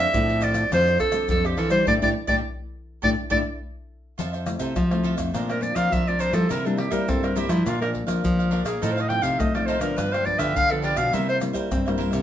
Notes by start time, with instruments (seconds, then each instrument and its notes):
Already playing: nylon-string guitar F3, cavaquinho C5 D5
0.00 cavaquinho A4, clarinet E5
0.13 nylon-string guitar A2 F3 C4 D4 A4, pandeiro, tamborim, maracas, surdo
0.29 cavaquinho A4 C5 D5, pandeiro, maracas
0.41 cavaquinho F4 A4 C5 D5, clarinet D5, pandeiro, tamborim, maracas
0.54 cavaquinho A4 C5 D5, pandeiro, tamborim, maracas
0.71 nylon-string guitar F2 F3 C4 D4 A4, cavaquinho F4 A4 C5 D5, clarinet C5, pandeiro, tamborim, maracas, surdo
0.87 cavaquinho A4 C5 D5, pandeiro, maracas
0.99 clarinet A4, muted cavaquinho stroke, pandeiro, tamborim, maracas, surdo
1.12 nylon-string guitar C4 D4 A4, cavaquinho A4 C5 D5, pandeiro, tamborim, maracas
1.29 nylon-string guitar F2 F3, clarinet A4, pandeiro, maracas, surdo
1.44 clarinet G4, cavaquinho A4 C5 D5, pandeiro, tamborim, maracas
1.57 nylon-string guitar E3, cavaquinho F4 A4 C5 D5, clarinet A4, pandeiro
1.70 nylon-string guitar G3 D4 E4, cavaquinho A4 D5, clarinet C5, pandeiro, tamborim, maracas
1.87 nylon-string guitar A2 A3 D4 E4, cavaquinho G4 A4 D5, clarinet D5, surdo
2.02 nylon-string guitar A2 A3 D4 E4, cavaquinho G4 A4 D5, clarinet D5, surdo
2.27 nylon-string guitar A2 A3 D4 E4, cavaquinho G4 A4 D5, clarinet D5, surdo
3.02 nylon-string guitar A2 A3 D4 E4, cavaquinho G4 A4 D5, clarinet D5, surdo
3.30 nylon-string guitar A2 A3 D4 E4, cavaquinho G4 A4 D5, clarinet D5, surdo
4.18 nylon-string guitar F2 F3, cavaquinho F4 A4 C5 E5, pandeiro, maracas, surdo
4.33 cavaquinho A4 C5 E5, pandeiro, maracas
4.46 nylon-string guitar A3 C4 E4, muted cavaquinho stroke, pandeiro, tamborim, maracas
4.59 nylon-string guitar C3, cavaquinho A4 C5 E5, pandeiro, maracas, surdo
4.76 nylon-string guitar C3 F3, pandeiro, tamborim, maracas, surdo
4.91 nylon-string guitar A3 C4 E4, cavaquinho A4 C5 E5, pandeiro, tamborim, maracas
5.03 cavaquinho F4 A4 C5 E5, pandeiro
5.17 nylon-string guitar F2, cavaquinho A4 C5 E5, pandeiro, tamborim, maracas, surdo
5.34 nylon-string guitar A#2 F3 C4 D4, cavaquinho D4 A#4 C5 D5, pandeiro, tamborim, maracas, surdo
5.49 clarinet A#4, cavaquinho A#4 C5 D5, pandeiro, tamborim, maracas
5.61 nylon-string guitar F3 C4 D4, clarinet D5, muted cavaquinho stroke, pandeiro, maracas
5.75 nylon-string guitar F3, cavaquinho A#4 C5 D5, clarinet F5, pandeiro, tamborim, maracas, surdo
5.92 nylon-string guitar F3, clarinet E5, pandeiro, maracas, surdo
6.07 nylon-string guitar F3 C4 D4, cavaquinho A#4 C5 D5, clarinet D5, pandeiro, maracas
6.19 cavaquinho D4 A#4 C5 D5, clarinet C5, pandeiro, maracas
6.32 nylon-string guitar F3 G3 A#3 E4, clarinet A4, cavaquinho A#4 C5 D5, pandeiro, tamborim, maracas, surdo
6.49 nylon-string guitar C3, cavaquinho E4 A#4 C5 E5, clarinet A#4, pandeiro, maracas, surdo
6.65 nylon-string guitar G3 A#3 E4, clarinet D4, cavaquinho A#4 C5 E5, pandeiro, maracas
6.77 clarinet G4, muted cavaquinho stroke, pandeiro, tamborim
6.91 nylon-string guitar G3 A#3 E4, clarinet A#4, cavaquinho A#4 C5 E5, pandeiro, maracas, surdo
7.08 nylon-string guitar G2 C4, clarinet A4, pandeiro, tamborim, maracas, surdo
7.23 cavaquinho A#4 C5 E5, clarinet A#4, pandeiro, tamborim, maracas
7.36 nylon-string guitar G3 A#3 E4, cavaquinho E4 A#4 C5 E5, clarinet G4, pandeiro, maracas
7.49 nylon-string guitar F3, clarinet E4, cavaquinho A#4 C5 E5, pandeiro, tamborim, maracas, surdo
7.65 nylon-string guitar A#2 F3 A#3 D4, cavaquinho D4 A#4 D5 F5, clarinet F4, pandeiro, tamborim, maracas, surdo
7.81 nylon-string guitar F3 A#3 D4, clarinet A#4, cavaquinho A#4 D5 F5, pandeiro, tamborim, maracas
7.93 muted cavaquinho stroke, pandeiro, surdo
8.06 nylon-string guitar F3 A#3 D4, cavaquinho A#4 D5 F5, pandeiro, tamborim, maracas, surdo
8.24 nylon-string guitar F3, pandeiro, maracas, surdo
8.39 cavaquinho A#4 D5 F5, pandeiro, maracas
8.51 nylon-string guitar F3 A#3 D4, cavaquinho D4 A#4 D5 F5, pandeiro
8.64 nylon-string guitar A#2, clarinet G#4, cavaquinho A#4 D5 F5, pandeiro, tamborim, maracas, surdo
8.81 nylon-string guitar A2 F3 C4 D#4, cavaquinho D#4 A4 C5 F5, clarinet A4, pandeiro, maracas, surdo
8.92 clarinet C5
8.97 cavaquinho A4 C5 F5, clarinet D#5, pandeiro, maracas
9.09 nylon-string guitar F3 C4 D#4, clarinet G5, muted cavaquinho stroke, pandeiro, tamborim
9.22 nylon-string guitar C3, cavaquinho A4 C5 F5, clarinet F5, pandeiro, maracas, surdo
9.39 nylon-string guitar A2 A3, clarinet D#5, pandeiro, tamborim, maracas, surdo
9.54 nylon-string guitar F3 C4 D#4, cavaquinho A4 C5 F5, clarinet D5, pandeiro, tamborim, maracas
9.66 cavaquinho D#4 A4 C5 F5, clarinet C5, pandeiro
9.80 nylon-string guitar D3 F3 B3 D4, cavaquinho A4 C5 F5, clarinet A#4, pandeiro, tamborim, maracas, surdo
9.96 nylon-string guitar G2, cavaquinho D4 G4 B4 F5, clarinet B4, pandeiro, tamborim, maracas, surdo
10.11 cavaquinho G4 B4 F5, clarinet C5, pandeiro, tamborim, maracas
10.25 nylon-string guitar F3 B3 D4, clarinet D5, muted cavaquinho stroke, pandeiro, surdo
10.39 nylon-string guitar D3, cavaquinho G4 B4 F5, clarinet E5, pandeiro, tamborim, maracas, surdo
10.56 nylon-string guitar D3, clarinet F5, pandeiro, maracas, surdo
10.70 nylon-string guitar F3 B3 D4, cavaquinho G4 B4 F5, clarinet A4, pandeiro, maracas
10.82 cavaquinho D4 G4 B4 F5, clarinet D5, pandeiro
10.96 nylon-string guitar B2, cavaquinho G4 B4 F5, clarinet F5, pandeiro, tamborim, maracas, surdo
11.12 nylon-string guitar C3 G3 A#3 E4, cavaquinho E4 A#4 C5 E5, clarinet E5, pandeiro, maracas, surdo
11.29 cavaquinho A#4 C5 E5, clarinet C5, pandeiro, maracas
11.40 nylon-string guitar G3 A#3 E4, muted cavaquinho stroke, pandeiro, tamborim, maracas
11.53 nylon-string guitar G3, cavaquinho A#4 C5 E5, pandeiro, maracas, surdo
11.72 nylon-string guitar G2 C4, pandeiro, tamborim, maracas, surdo
11.86 nylon-string guitar G3 A#3 E4, cavaquinho A#4 C5 E5, pandeiro, tamborim, maracas
11.98 cavaquinho E4 A#4 C5 E5, pandeiro
12.11 nylon-string guitar C3, cavaquinho A#4 C5 E5, pandeiro, tamborim, maracas, surdo